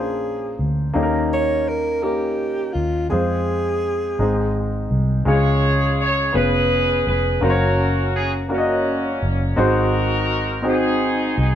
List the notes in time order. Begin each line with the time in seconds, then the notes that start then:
Already playing: A#1 A#2 A#3 C#4 D4 F4 G#4 A#4 C5
0.59 D2
0.94 D#2 D#3 A#3 C#4 D#4 G4 A4
1.03 A#4
1.34 C#5
1.69 A#4
2.02 A#3 C#4 D#4 G4 A#4
2.73 D#2 F4
3.09 F2 G#3 C4 F4 G#4 C5
4.19 G#1 G#2 G#3 C4 D#4 G#4 C5
4.91 C2
5.25 C#2 C#3 G#3 C#4 F4 G#4 C#5
6.00 C#5
6.32 F1 B3 C#4 F4 G#4 B4
6.36 G#4
7.07 F1 B4
7.41 F#1 A#3 C#4 F#4 A#4 C5
7.50 C#5
8.16 G#4
8.49 A#3 C#4 F#4 A#4 D5
8.53 A#3 C#4 F#4
8.58 D#5
9.22 F#1
9.56 G#1 G#2 C4 D#4 F#4 G#4 C5
9.60 D#4 A#4
10.62 C4 D#4 F#4 G#4 C5
10.68 C4 D#4 G#4
11.38 C2 G#4